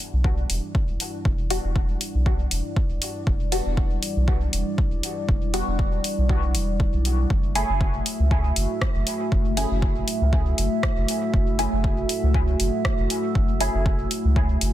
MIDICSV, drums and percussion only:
0, 0, Header, 1, 2, 480
1, 0, Start_track
1, 0, Tempo, 504202
1, 1192, Time_signature, 4, 2, 24, 8
1, 14024, End_track
2, 0, Start_track
2, 0, Title_t, "Drums"
2, 232, Note_on_c, 9, 36, 113
2, 327, Note_off_c, 9, 36, 0
2, 473, Note_on_c, 9, 46, 81
2, 568, Note_off_c, 9, 46, 0
2, 712, Note_on_c, 9, 36, 115
2, 807, Note_off_c, 9, 36, 0
2, 953, Note_on_c, 9, 46, 79
2, 1048, Note_off_c, 9, 46, 0
2, 1192, Note_on_c, 9, 36, 125
2, 1287, Note_off_c, 9, 36, 0
2, 1432, Note_on_c, 9, 46, 83
2, 1528, Note_off_c, 9, 46, 0
2, 1672, Note_on_c, 9, 36, 118
2, 1767, Note_off_c, 9, 36, 0
2, 1912, Note_on_c, 9, 46, 88
2, 2007, Note_off_c, 9, 46, 0
2, 2152, Note_on_c, 9, 36, 117
2, 2247, Note_off_c, 9, 36, 0
2, 2392, Note_on_c, 9, 46, 87
2, 2487, Note_off_c, 9, 46, 0
2, 2632, Note_on_c, 9, 36, 120
2, 2727, Note_off_c, 9, 36, 0
2, 2872, Note_on_c, 9, 46, 89
2, 2967, Note_off_c, 9, 46, 0
2, 3112, Note_on_c, 9, 36, 125
2, 3207, Note_off_c, 9, 36, 0
2, 3352, Note_on_c, 9, 46, 87
2, 3447, Note_off_c, 9, 46, 0
2, 3592, Note_on_c, 9, 36, 127
2, 3687, Note_off_c, 9, 36, 0
2, 3832, Note_on_c, 9, 46, 86
2, 3927, Note_off_c, 9, 46, 0
2, 4072, Note_on_c, 9, 36, 126
2, 4167, Note_off_c, 9, 36, 0
2, 4313, Note_on_c, 9, 46, 87
2, 4408, Note_off_c, 9, 46, 0
2, 4552, Note_on_c, 9, 36, 121
2, 4647, Note_off_c, 9, 36, 0
2, 4792, Note_on_c, 9, 46, 88
2, 4888, Note_off_c, 9, 46, 0
2, 5032, Note_on_c, 9, 36, 126
2, 5127, Note_off_c, 9, 36, 0
2, 5272, Note_on_c, 9, 46, 84
2, 5367, Note_off_c, 9, 46, 0
2, 5512, Note_on_c, 9, 36, 123
2, 5607, Note_off_c, 9, 36, 0
2, 5752, Note_on_c, 9, 46, 83
2, 5847, Note_off_c, 9, 46, 0
2, 5992, Note_on_c, 9, 36, 115
2, 6087, Note_off_c, 9, 36, 0
2, 6232, Note_on_c, 9, 46, 87
2, 6327, Note_off_c, 9, 46, 0
2, 6472, Note_on_c, 9, 36, 117
2, 6567, Note_off_c, 9, 36, 0
2, 6712, Note_on_c, 9, 46, 83
2, 6808, Note_off_c, 9, 46, 0
2, 6952, Note_on_c, 9, 36, 118
2, 7047, Note_off_c, 9, 36, 0
2, 7192, Note_on_c, 9, 46, 86
2, 7287, Note_off_c, 9, 46, 0
2, 7432, Note_on_c, 9, 36, 118
2, 7527, Note_off_c, 9, 36, 0
2, 7672, Note_on_c, 9, 46, 85
2, 7768, Note_off_c, 9, 46, 0
2, 7912, Note_on_c, 9, 36, 118
2, 8007, Note_off_c, 9, 36, 0
2, 8152, Note_on_c, 9, 46, 86
2, 8247, Note_off_c, 9, 46, 0
2, 8392, Note_on_c, 9, 36, 109
2, 8393, Note_on_c, 9, 37, 87
2, 8487, Note_off_c, 9, 36, 0
2, 8488, Note_off_c, 9, 37, 0
2, 8632, Note_on_c, 9, 46, 83
2, 8727, Note_off_c, 9, 46, 0
2, 8872, Note_on_c, 9, 36, 115
2, 8967, Note_off_c, 9, 36, 0
2, 9112, Note_on_c, 9, 46, 79
2, 9207, Note_off_c, 9, 46, 0
2, 9352, Note_on_c, 9, 36, 118
2, 9447, Note_off_c, 9, 36, 0
2, 9592, Note_on_c, 9, 46, 84
2, 9688, Note_off_c, 9, 46, 0
2, 9832, Note_on_c, 9, 36, 115
2, 9927, Note_off_c, 9, 36, 0
2, 10073, Note_on_c, 9, 46, 80
2, 10168, Note_off_c, 9, 46, 0
2, 10312, Note_on_c, 9, 36, 115
2, 10312, Note_on_c, 9, 37, 88
2, 10407, Note_off_c, 9, 36, 0
2, 10407, Note_off_c, 9, 37, 0
2, 10553, Note_on_c, 9, 46, 76
2, 10648, Note_off_c, 9, 46, 0
2, 10792, Note_on_c, 9, 36, 115
2, 10887, Note_off_c, 9, 36, 0
2, 11033, Note_on_c, 9, 46, 78
2, 11128, Note_off_c, 9, 46, 0
2, 11272, Note_on_c, 9, 36, 114
2, 11367, Note_off_c, 9, 36, 0
2, 11512, Note_on_c, 9, 46, 81
2, 11607, Note_off_c, 9, 46, 0
2, 11752, Note_on_c, 9, 36, 116
2, 11847, Note_off_c, 9, 36, 0
2, 11992, Note_on_c, 9, 46, 80
2, 12088, Note_off_c, 9, 46, 0
2, 12232, Note_on_c, 9, 36, 112
2, 12232, Note_on_c, 9, 37, 92
2, 12327, Note_off_c, 9, 36, 0
2, 12327, Note_off_c, 9, 37, 0
2, 12473, Note_on_c, 9, 46, 82
2, 12568, Note_off_c, 9, 46, 0
2, 12712, Note_on_c, 9, 36, 114
2, 12808, Note_off_c, 9, 36, 0
2, 12952, Note_on_c, 9, 46, 80
2, 13047, Note_off_c, 9, 46, 0
2, 13192, Note_on_c, 9, 36, 121
2, 13287, Note_off_c, 9, 36, 0
2, 13432, Note_on_c, 9, 46, 79
2, 13527, Note_off_c, 9, 46, 0
2, 13672, Note_on_c, 9, 36, 118
2, 13767, Note_off_c, 9, 36, 0
2, 13912, Note_on_c, 9, 46, 83
2, 14007, Note_off_c, 9, 46, 0
2, 14024, End_track
0, 0, End_of_file